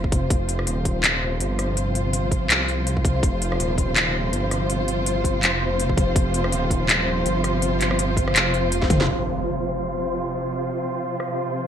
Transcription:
0.00 0.29 F1 loud
0.00 11.67 C3 medium
0.00 11.67 F3 medium
0.00 11.67 F4 medium
0.00 11.67 C5 medium
0.04 kick medium
0.12 kick loud
0.12 closed hi-hat medium
0.30 0.66 F1 loud
0.30 kick loud
0.30 closed hi-hat medium
0.49 closed hi-hat medium
0.59 cross-stick medium
0.67 1.39 D#1 loud
0.67 closed hi-hat medium
0.85 kick medium
0.85 closed hi-hat medium
1.04 clap loud
1.04 closed hi-hat medium
1.40 2.49 G1 loud
1.40 closed hi-hat medium
1.59 cross-stick medium
1.59 closed hi-hat medium
1.77 closed hi-hat medium
1.95 closed hi-hat medium
2.13 closed hi-hat medium
2.31 kick medium
2.31 closed hi-hat medium
2.50 3.22 C2 loud
2.50 clap loud
2.50 closed hi-hat medium
2.68 closed hi-hat soft
2.87 closed hi-hat medium
2.97 kick medium
3.05 kick loud
3.05 closed hi-hat medium
3.23 3.58 F1 medium
3.23 kick loud
3.23 closed hi-hat medium
3.42 closed hi-hat medium
3.52 cross-stick medium
3.60 4.32 D#1 loud
3.60 closed hi-hat medium
3.78 kick medium
3.78 closed hi-hat medium
3.96 clap loud
3.96 closed hi-hat medium
4.33 5.41 G1 loud
4.33 closed hi-hat medium
4.51 cross-stick medium
4.51 closed hi-hat medium
4.70 closed hi-hat medium
4.88 closed hi-hat medium
5.06 closed hi-hat medium
5.24 kick medium
5.24 closed hi-hat medium
5.43 6.15 F1 loud
5.43 clap loud
5.43 closed hi-hat medium
5.80 closed hi-hat medium
5.89 kick medium
5.97 kick loud
5.97 closed hi-hat medium
6.16 6.51 F1 loud
6.16 kick loud
6.16 closed hi-hat medium
6.34 closed hi-hat medium
6.44 cross-stick medium
6.52 7.24 D#1 loud
6.52 closed hi-hat medium
6.70 kick medium
6.70 closed hi-hat medium
6.89 clap loud
6.89 closed hi-hat medium
7.25 8.34 G1 loud
7.25 closed hi-hat medium
7.44 cross-stick medium
7.44 closed hi-hat medium
7.62 closed hi-hat medium
7.81 clap medium
7.81 closed hi-hat medium
7.91 cross-stick medium
7.99 closed hi-hat medium
8.17 kick medium
8.17 closed hi-hat medium
8.28 cross-stick medium
8.35 8.71 F1 loud
8.35 clap loud
8.35 closed hi-hat medium
8.54 closed hi-hat soft
8.72 9.07 F1 loud
8.72 closed hi-hat medium
8.82 kick medium
8.82 snare soft
8.90 kick loud
8.90 closed hi-hat medium
8.90 mid tom medium
9.01 snare medium
9.09 impact medium
11.20 cross-stick medium

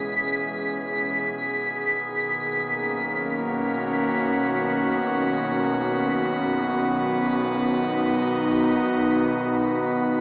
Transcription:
0.00 1.19 C#2 medium
0.00 1.23 B2 medium
0.00 1.23 E3 medium
0.00 1.23 G#3 medium
0.00 1.23 C#4 medium
0.00 3.00 G#4 medium
0.00 10.21 B6 medium
1.23 10.21 B1 medium
1.23 10.21 B2 medium
1.37 10.21 D#3 medium
2.37 6.21 A#3 medium
2.51 7.69 C#4 medium
3.08 10.21 F#4 medium
5.99 10.21 B3 medium
7.47 10.21 D#4 medium

